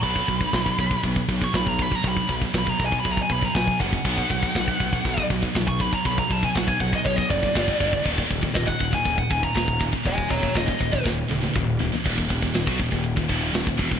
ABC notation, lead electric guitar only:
X:1
M:4/4
L:1/16
Q:1/4=120
K:Ebm
V:1 name="Lead electric guitar"
=b8 z3 d' b _b =b _b | =b2 z2 b _b a =b _b a =b _b a2 g2- | g8- g2 z3 d' =b _b | =b _b =a _a ^f a f e d e =d6 |
z4 e g2 a2 g a b b2 z2 | [ea]2 [db]2 e4 z8 | z16 |]